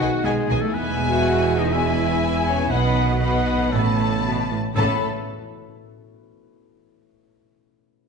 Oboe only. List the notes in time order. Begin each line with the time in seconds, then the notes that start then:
Already playing: F#5
0.25 G#4
0.61 A4
0.74 B4
1.11 F#5
1.59 D#5
1.72 E5
2.46 C#5
2.70 B4
3.22 B4
3.72 A4
4.75 A4